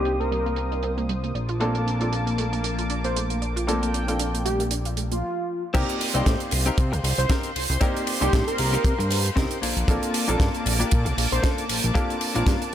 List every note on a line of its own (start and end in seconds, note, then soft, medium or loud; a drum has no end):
0.00 1.33 C2 medium
0.00 1.33 A#3 medium
0.00 1.33 C4 medium
0.00 1.33 D4 medium
0.00 1.34 D#4 medium
0.00 0.17 G4 medium
0.00 1.34 G4 medium
0.00 1.31 C5 medium
0.00 1.31 D#6 medium
0.05 0.15 C4 medium
0.05 closed hi-hat medium
0.20 0.25 A#3 medium
0.20 0.92 A#4 medium
0.20 closed hi-hat medium
0.31 0.37 G3 medium
0.31 closed hi-hat medium
0.46 0.54 A#3 medium
0.46 closed hi-hat medium
0.56 0.71 C4 medium
0.56 closed hi-hat medium
0.72 0.79 D#4 medium
0.72 closed hi-hat soft
0.83 0.93 C4 medium
0.83 closed hi-hat medium
0.98 1.05 A#3 loud
0.98 closed hi-hat soft
1.09 1.19 G3 medium
1.09 closed hi-hat medium
1.23 1.31 A#3 medium
1.23 closed hi-hat medium
1.35 5.23 A#1 medium
1.35 5.19 A#3 medium
1.35 1.45 D5 medium
1.35 3.40 A5 medium
1.35 5.19 D6 medium
1.35 closed hi-hat medium
1.49 1.57 F4 loud
1.49 closed hi-hat medium
1.60 1.74 A3 medium
1.60 1.97 A#3 medium
1.60 1.97 C4 medium
1.60 1.97 D4 medium
1.60 1.98 F4 medium
1.60 1.98 A4 loud
1.60 closed hi-hat medium
1.75 1.83 A#3 medium
1.75 closed hi-hat soft
1.86 1.92 D4 medium
1.86 closed hi-hat medium
2.00 3.64 A#3 medium
2.00 3.65 C4 medium
2.00 3.65 D4 medium
2.00 2.09 F4 medium
2.00 3.65 F4 medium
2.00 3.65 A4 medium
2.00 closed hi-hat soft
2.12 2.22 D4 medium
2.12 closed hi-hat medium
2.27 2.31 A#3 medium
2.27 closed hi-hat soft
2.38 2.44 A3 loud
2.38 closed hi-hat medium
2.53 2.60 A#3 medium
2.53 closed hi-hat soft
2.64 2.78 D4 medium
2.64 closed hi-hat medium
2.78 2.86 F4 medium
2.78 closed hi-hat medium
2.90 3.00 D4 medium
2.90 closed hi-hat medium
3.04 3.12 A#3 medium
3.04 3.19 C5 medium
3.04 closed hi-hat soft
3.16 3.26 A3 medium
3.16 closed hi-hat loud
3.30 3.38 A#3 medium
3.30 closed hi-hat medium
3.42 3.52 D5 medium
3.42 5.21 G5 medium
3.42 closed hi-hat soft
3.56 3.64 F4 medium
3.56 closed hi-hat medium
3.67 3.81 A3 medium
3.67 4.04 A#3 medium
3.67 4.04 C4 medium
3.67 4.04 D4 medium
3.67 4.05 F4 medium
3.67 4.05 A4 loud
3.67 closed hi-hat loud
3.82 3.90 A#3 medium
3.82 closed hi-hat soft
3.94 3.99 D4 medium
3.94 closed hi-hat medium
4.07 5.22 A#3 medium
4.07 5.23 C4 medium
4.07 5.23 D4 medium
4.07 4.16 F4 medium
4.07 5.23 F4 medium
4.07 5.23 A4 medium
4.07 closed hi-hat medium
4.19 4.29 D4 medium
4.19 closed hi-hat medium
4.34 4.39 A#3 medium
4.34 closed hi-hat medium
4.45 4.51 A3 medium
4.45 4.62 G4 medium
4.45 closed hi-hat medium
4.60 4.67 A#3 medium
4.60 closed hi-hat soft
4.71 4.85 D4 medium
4.71 closed hi-hat medium
4.85 4.93 F4 medium
4.85 closed hi-hat soft
4.97 5.11 A3 medium
4.97 closed hi-hat medium
5.11 5.19 A#3 medium
5.11 5.63 F4 medium
5.11 closed hi-hat soft
5.74 5.84 C2 medium
5.74 6.11 A#3 loud
5.74 5.94 C4 loud
5.74 6.11 C4 medium
5.74 5.95 D#4 loud
5.74 6.12 D#4 medium
5.74 5.95 G4 loud
5.74 6.12 G4 loud
5.74 5.95 A#4 loud
5.74 9.59 C5 medium
5.74 6.12 D5 medium
5.74 9.59 C6 medium
5.74 kick loud
5.74 closed hi-hat loud
5.74 crash loud
5.74 ride medium
5.89 closed hi-hat medium
6.01 open hi-hat loud
6.01 ride medium
6.14 6.22 C2 medium
6.14 7.78 A#3 medium
6.14 6.40 C4 medium
6.14 7.79 C4 medium
6.14 6.41 D#4 medium
6.14 7.79 D#4 medium
6.14 6.41 G4 medium
6.14 7.79 G4 medium
6.14 6.41 C5 loud
6.14 7.79 D5 medium
6.14 closed hi-hat medium
6.26 6.36 A2 medium
6.26 kick loud
6.26 snare loud
6.26 closed hi-hat loud
6.26 ride medium
6.40 closed hi-hat medium
6.51 6.70 C2 loud
6.51 open hi-hat loud
6.51 ride medium
6.66 6.78 C4 loud
6.66 6.78 D#4 medium
6.66 6.78 G4 medium
6.66 6.78 A#4 medium
6.66 closed hi-hat medium
6.78 6.94 C3 loud
6.78 kick loud
6.78 closed hi-hat medium
6.78 ride medium
6.92 7.00 C2 medium
6.92 muted clean electric guitar stroke loud
6.92 closed hi-hat soft
7.03 7.13 C2 medium
7.03 muted clean electric guitar stroke soft
7.03 open hi-hat loud
7.03 ride medium
7.18 7.26 C2 loud
7.18 7.33 C5 medium
7.18 muted clean electric guitar stroke soft
7.18 closed hi-hat medium
7.29 7.50 C4 medium
7.29 7.50 D#4 medium
7.29 7.50 G4 medium
7.29 7.50 A#4 loud
7.29 kick loud
7.29 snare loud
7.29 closed hi-hat loud
7.29 ride medium
7.43 closed hi-hat medium
7.56 7.67 C2 soft
7.56 open hi-hat loud
7.56 ride medium
7.70 7.77 C2 loud
7.70 muted clean electric guitar stroke soft
7.70 closed hi-hat medium
7.81 8.18 A#3 medium
7.81 8.01 C4 loud
7.81 8.18 C4 medium
7.81 8.01 D#4 loud
7.81 8.18 D#4 medium
7.81 8.02 G4 loud
7.81 8.19 G4 loud
7.81 8.02 A#4 loud
7.81 8.18 D5 medium
7.81 kick loud
7.81 closed hi-hat loud
7.81 ride medium
7.97 closed hi-hat medium
8.07 open hi-hat loud
8.07 ride medium
8.21 8.29 C2 loud
8.21 9.61 A#3 medium
8.21 8.47 C4 loud
8.21 9.61 C4 medium
8.21 8.47 D#4 medium
8.21 9.61 D#4 medium
8.21 8.45 G4 medium
8.21 8.48 G4 medium
8.21 9.62 G4 medium
8.21 8.48 A4 loud
8.21 9.61 D5 medium
8.21 closed hi-hat medium
8.33 8.43 A2 medium
8.33 kick loud
8.33 snare loud
8.33 closed hi-hat medium
8.33 ride medium
8.47 9.19 A#4 medium
8.47 closed hi-hat medium
8.58 8.77 C2 loud
8.58 open hi-hat loud
8.58 ride medium
8.73 8.85 C4 loud
8.73 8.85 D#4 medium
8.73 8.85 G4 medium
8.73 8.85 A#4 medium
8.73 closed hi-hat soft
8.85 8.94 C3 medium
8.85 kick loud
8.85 closed hi-hat loud
8.85 ride medium
8.99 9.30 G2 medium
8.99 muted clean electric guitar stroke loud
8.99 closed hi-hat medium
9.10 muted clean electric guitar stroke soft
9.10 open hi-hat loud
9.10 ride medium
9.25 muted clean electric guitar stroke soft
9.25 closed hi-hat medium
9.36 9.46 C2 medium
9.36 9.56 C4 loud
9.36 9.57 D#4 medium
9.36 9.57 G4 medium
9.36 9.57 A#4 medium
9.36 kick loud
9.36 snare loud
9.36 closed hi-hat medium
9.36 ride medium
9.51 closed hi-hat medium
9.62 9.74 A#1 soft
9.62 10.14 A#3 loud
9.62 12.74 A#3 medium
9.62 10.14 D4 medium
9.62 10.14 F4 medium
9.62 10.14 A4 medium
9.62 12.74 A5 medium
9.62 12.74 D6 medium
9.62 open hi-hat loud
9.62 ride medium
9.77 9.84 A#1 medium
9.77 closed hi-hat medium
9.88 9.98 A#1 loud
9.88 10.25 A#3 loud
9.88 10.25 C4 medium
9.88 10.25 D4 medium
9.88 10.25 F4 medium
9.88 10.25 A4 loud
9.88 kick loud
9.88 closed hi-hat loud
9.88 ride medium
10.03 closed hi-hat medium
10.14 open hi-hat loud
10.14 ride medium
10.27 10.36 A#1 medium
10.27 11.92 A#3 medium
10.27 10.54 A#3 loud
10.27 11.92 C4 medium
10.27 11.92 D4 medium
10.27 10.54 D4 medium
10.27 10.54 F4 medium
10.27 11.93 F4 medium
10.27 10.55 A4 loud
10.27 11.93 A4 medium
10.27 closed hi-hat medium
10.40 10.49 G2 medium
10.40 kick loud
10.40 snare loud
10.40 closed hi-hat medium
10.40 ride medium
10.54 closed hi-hat soft
10.66 10.84 A#1 loud
10.66 open hi-hat loud
10.66 ride medium
10.79 10.91 A#3 medium
10.79 10.92 D4 medium
10.79 10.92 F4 medium
10.79 10.92 G4 medium
10.79 closed hi-hat medium
10.91 11.08 A#2 loud
10.91 kick loud
10.91 closed hi-hat loud
10.91 ride medium
11.05 11.14 A#1 medium
11.05 muted clean electric guitar stroke loud
11.05 closed hi-hat medium
11.17 11.27 A#1 medium
11.17 muted clean electric guitar stroke soft
11.17 open hi-hat loud
11.17 ride medium
11.31 11.40 A#1 loud
11.31 11.46 C5 medium
11.31 muted clean electric guitar stroke soft
11.31 closed hi-hat medium
11.42 11.63 A#3 medium
11.42 11.63 D4 medium
11.42 11.64 F4 medium
11.42 11.64 A4 medium
11.42 kick loud
11.42 snare loud
11.42 closed hi-hat loud
11.42 ride medium
11.58 closed hi-hat medium
11.69 11.81 A#1 soft
11.69 open hi-hat loud
11.69 ride medium
11.83 11.92 A#1 loud
11.83 muted clean electric guitar stroke soft
11.83 closed hi-hat medium
11.94 12.32 A#3 loud
11.94 12.15 A#3 loud
11.94 12.32 C4 medium
11.94 12.32 D4 medium
11.94 12.15 D4 loud
11.94 12.32 F4 medium
11.94 12.15 F4 loud
11.94 12.16 G4 loud
11.94 12.32 A4 loud
11.94 kick loud
11.94 closed hi-hat loud
11.94 ride medium
12.10 closed hi-hat medium
12.21 open hi-hat loud
12.21 ride medium
12.34 12.43 A#1 loud
12.34 12.74 A#3 medium
12.34 12.61 A#3 medium
12.34 12.74 C4 medium
12.34 12.74 D4 medium
12.34 12.61 D4 medium
12.34 12.61 F4 medium
12.34 12.74 F4 medium
12.34 12.62 A#4 loud
12.34 12.74 A5 medium
12.34 closed hi-hat medium
12.46 12.56 G2 medium
12.46 kick loud
12.46 snare loud
12.46 closed hi-hat medium
12.46 ride medium
12.62 closed hi-hat medium